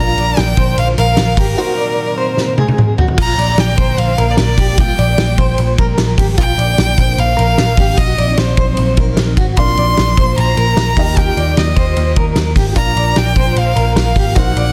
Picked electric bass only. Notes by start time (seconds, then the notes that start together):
Already playing: A#1
0.18 A#1
0.38 A#1
0.57 A#1
0.78 A#1
0.98 A#1
1.18 A#1
1.37 G#1
3.18 A#1
3.38 A#1
3.58 A#1
3.78 A#1
3.98 A#1
4.18 A#1
4.38 A#1
4.58 A#1
4.99 A#1
5.19 A#1
5.38 A#1
5.58 A#1
5.78 A#1
5.98 A#1
6.18 G#1
6.38 A#1
6.58 A#1
6.78 A#1
6.98 A#1
7.18 A#1
7.38 A#1
7.58 A#1
7.78 G#1
7.98 A#1
8.19 A#1
8.38 A#1
8.58 A#1
8.79 A#1
8.97 A#1
9.18 A#1
9.37 G#1
9.57 A#1
9.77 A#1
9.98 A#1
10.18 A#1
10.38 A#1
10.57 A#1
10.77 A#1
10.97 D#2
11.37 D#2
11.57 D#2
11.77 D#2
11.97 D#2
12.17 D#2
12.37 D#2
12.56 G#1
12.96 A#1
13.17 A#1
13.36 A#1
13.56 A#1
13.76 A#1
13.95 A#1
14.16 G#1
14.36 A#1
14.56 A#1